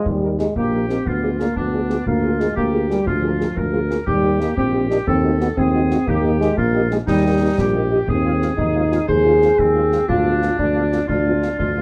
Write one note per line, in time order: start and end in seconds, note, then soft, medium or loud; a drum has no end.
0.06 0.48 D#2 medium
0.06 0.37 G3 medium
0.06 concert bass drum medium
0.23 0.29 A#3 soft
0.23 0.29 D#4 soft
0.23 0.29 G4 soft
0.23 0.29 A#4 soft
0.39 0.55 G#3 medium
0.39 0.46 A#3 soft
0.39 0.46 D#4 soft
0.39 0.46 G4 soft
0.39 0.45 A#4 soft
0.39 snare soft
0.56 0.98 A#1 soft
0.56 0.87 A#3 medium
0.56 1.03 G4 soft
0.56 concert bass drum medium
0.73 0.79 A#3 soft
0.73 0.79 D#4 soft
0.73 0.79 G4 soft
0.73 0.79 A#4 soft
0.89 0.96 A#3 soft
0.89 1.07 C4 medium
0.89 0.95 D#4 soft
0.89 0.95 G4 soft
0.89 0.96 A#4 soft
0.89 snare soft
1.05 1.48 D2 medium
1.05 1.39 B3 medium
1.05 1.56 F4 medium
1.05 concert bass drum medium
1.23 1.29 G#3 soft
1.23 1.29 F4 soft
1.23 1.29 G#4 soft
1.23 1.29 D5 soft
1.39 1.45 G#3 soft
1.39 1.58 A#3 medium
1.39 1.45 F4 soft
1.39 1.45 G#4 soft
1.39 1.46 D5 soft
1.39 snare soft
1.55 1.98 D2 soft
1.55 2.06 B3 medium
1.55 2.02 D4 soft
1.55 concert bass drum medium
1.72 1.79 G#3 soft
1.72 1.79 F4 soft
1.72 1.79 G#4 soft
1.72 1.79 D5 soft
1.89 1.96 G#3 soft
1.89 1.96 F4 soft
1.89 1.95 G#4 soft
1.89 1.95 D5 soft
1.89 snare soft
2.06 2.48 D2 medium
2.06 2.42 A#3 medium
2.06 2.56 F4 medium
2.06 concert bass drum medium
2.23 2.29 A#3 soft
2.23 2.29 F4 soft
2.23 2.29 G#4 soft
2.23 2.30 A#4 soft
2.39 2.56 G#3 medium
2.39 2.45 A#3 soft
2.39 2.45 F4 soft
2.39 2.45 G#4 soft
2.39 2.46 A#4 soft
2.39 snare soft
2.56 2.98 D2 soft
2.56 2.88 A#3 medium
2.56 3.03 G4 medium
2.56 concert bass drum medium
2.72 2.79 A#3 soft
2.72 2.79 F4 soft
2.72 2.79 G#4 soft
2.72 2.80 A#4 soft
2.89 3.08 G3 medium
2.89 2.96 A#3 soft
2.89 2.96 F4 soft
2.89 2.96 G#4 soft
2.89 2.97 A#4 soft
2.89 snare soft
3.06 3.48 D2 medium
3.06 3.90 F3 medium
3.06 3.53 F4 medium
3.06 concert bass drum medium
3.23 3.29 A#3 soft
3.23 3.29 F4 soft
3.23 3.29 G#4 soft
3.23 3.31 A#4 soft
3.39 3.45 A#3 soft
3.39 3.46 F4 soft
3.39 3.45 G#4 soft
3.39 3.47 A#4 soft
3.39 snare soft
3.56 3.99 D2 soft
3.56 4.07 A#4 medium
3.56 concert bass drum medium
3.73 3.79 A#3 soft
3.73 3.79 F4 soft
3.73 3.79 G#4 soft
3.73 3.80 A#4 soft
3.90 3.96 A#3 soft
3.90 3.96 F4 soft
3.90 3.96 G#4 soft
3.90 3.97 A#4 soft
3.90 snare soft
4.07 4.49 D#2 medium
4.07 4.42 G3 medium
4.07 4.53 G4 medium
4.07 concert bass drum medium
4.24 4.30 A#3 soft
4.24 4.30 D#4 soft
4.24 4.30 G4 soft
4.24 4.30 D#5 soft
4.40 4.57 A#3 medium
4.40 4.46 A#3 soft
4.40 4.47 D#4 soft
4.40 4.47 G4 soft
4.40 4.47 D#5 soft
4.40 snare soft
4.57 4.99 A#1 soft
4.57 4.88 C4 medium
4.57 5.04 G4 medium
4.57 concert bass drum medium
4.74 4.80 A#3 soft
4.74 4.80 D#4 soft
4.74 4.80 G4 soft
4.74 4.80 D#5 soft
4.90 4.97 A#3 soft
4.90 4.98 D4 medium
4.90 4.97 D#4 soft
4.90 4.97 G4 soft
4.90 4.97 D#5 soft
4.90 snare soft
5.07 5.49 D#2 medium
5.07 5.38 C4 medium
5.07 5.54 A4 medium
5.07 concert bass drum medium
5.24 5.30 A3 soft
5.24 5.30 D#4 soft
5.24 5.30 F#4 soft
5.24 5.30 D#5 soft
5.40 5.47 A3 soft
5.40 5.48 B3 medium
5.40 5.47 D#4 soft
5.40 5.47 F#4 soft
5.40 5.46 D#5 soft
5.40 snare soft
5.57 5.95 D#2 medium
5.57 6.09 C4 medium
5.57 6.07 G#4 medium
5.57 concert bass drum medium
5.73 5.80 A3 soft
5.73 5.80 D#4 soft
5.73 5.80 F#4 soft
5.73 5.81 D#5 soft
5.90 5.97 A3 soft
5.90 5.97 D#4 soft
5.90 5.97 F#4 soft
5.90 5.97 D#5 soft
5.90 snare soft
6.06 6.49 D#2 medium
6.06 6.40 A#3 medium
6.06 6.57 G4 medium
6.06 concert bass drum medium
6.24 6.30 A#3 soft
6.24 6.30 D#4 soft
6.24 6.30 G4 soft
6.24 6.30 D#5 medium
6.40 6.59 G#3 medium
6.40 6.47 A#3 soft
6.40 6.47 D#4 soft
6.40 6.47 G4 soft
6.40 6.47 D#5 soft
6.40 snare soft
6.57 6.99 A#1 medium
6.57 6.90 A#3 medium
6.57 6.92 F4 medium
6.57 concert bass drum medium
6.74 6.80 A#3 soft
6.74 6.80 D#4 soft
6.74 6.80 G4 soft
6.74 6.81 D#5 soft
6.91 6.99 G#3 medium
6.91 6.97 A#3 soft
6.91 6.97 D#4 soft
6.91 6.97 G4 soft
6.91 6.97 D#5 soft
6.91 snare soft
7.06 7.50 D#2 medium
7.06 7.88 G3 medium
7.06 7.54 D#4 medium
7.06 concert bass drum medium
7.06 snare medium
7.25 7.31 A#3 medium
7.25 7.31 D#4 medium
7.25 7.31 G4 medium
7.25 7.31 D#5 soft
7.41 7.47 A#3 soft
7.41 7.47 D#4 soft
7.41 7.47 G4 soft
7.41 7.47 D#5 soft
7.58 8.00 A#1 medium
7.58 8.08 G4 medium
7.58 concert bass drum medium
7.58 snare soft
7.75 7.81 A#3 soft
7.75 7.81 D#4 soft
7.75 7.81 G4 soft
7.75 7.81 D#5 soft
7.91 7.98 A#3 soft
7.91 7.97 D#4 soft
7.91 7.97 G4 medium
7.91 7.98 D#5 soft
8.08 8.50 D#2 medium
8.08 8.55 C4 medium
8.08 9.05 G#4 medium
8.08 concert bass drum medium
8.25 8.31 G#3 medium
8.25 8.31 C4 soft
8.25 8.31 F4 medium
8.25 8.32 F5 soft
8.41 8.48 G#3 soft
8.41 8.47 C4 soft
8.41 8.48 F4 soft
8.41 8.48 F5 soft
8.41 snare soft
8.57 9.00 D#2 medium
8.57 9.04 D#4 medium
8.57 concert bass drum medium
8.75 8.81 G#3 soft
8.75 8.81 C4 soft
8.75 8.82 F4 soft
8.75 8.82 F5 soft
8.92 8.98 G#3 soft
8.92 8.98 C4 soft
8.92 8.98 F4 medium
8.92 8.99 F5 soft
8.92 snare soft
9.08 9.50 D#2 medium
9.08 10.05 G#4 loud
9.08 9.55 C5 medium
9.08 concert bass drum medium
9.25 9.31 G#3 soft
9.25 9.31 C4 soft
9.25 9.31 F4 soft
9.25 9.32 F5 soft
9.41 9.48 G#3 soft
9.41 9.48 C4 soft
9.41 9.48 F4 soft
9.41 9.49 F5 soft
9.41 snare soft
9.58 10.00 D#2 medium
9.58 10.09 C4 medium
9.58 concert bass drum medium
9.75 9.81 G#3 soft
9.75 9.82 C4 soft
9.75 9.81 F4 soft
9.75 9.82 F5 soft
9.92 9.98 G#3 soft
9.92 9.98 C4 soft
9.92 9.98 F4 soft
9.92 9.99 F5 soft
9.92 snare soft
10.08 10.51 D2 medium
10.08 11.05 D4 medium
10.08 10.55 F4 medium
10.08 concert bass drum medium
10.25 10.32 G#3 soft
10.25 10.31 B3 soft
10.25 10.31 F4 soft
10.25 10.32 F5 soft
10.42 10.48 G#3 soft
10.42 10.48 B3 soft
10.42 10.48 F4 soft
10.42 10.49 F5 soft
10.42 snare soft
10.59 11.01 D2 medium
10.59 11.06 D4 medium
10.59 concert bass drum medium
10.75 10.81 G#3 soft
10.75 10.82 B3 soft
10.75 10.81 F4 soft
10.75 10.82 F5 soft
10.92 10.98 G#3 soft
10.92 10.98 B3 soft
10.92 10.98 F4 soft
10.92 10.99 F5 soft
10.92 snare soft
11.08 11.51 D2 medium
11.08 11.82 D4 medium
11.08 11.55 F4 medium
11.08 concert bass drum medium
11.26 11.32 G#3 soft
11.26 11.32 B3 soft
11.26 11.32 F4 soft
11.26 11.32 F5 soft
11.42 11.49 G#3 soft
11.42 11.49 B3 soft
11.42 11.49 F4 soft
11.42 11.49 F5 soft
11.42 snare soft
11.58 11.82 D2 medium
11.58 11.82 F4 medium
11.58 concert bass drum medium
11.76 11.82 G#3 soft
11.76 11.82 B3 soft
11.76 11.82 F4 soft
11.76 11.82 F5 soft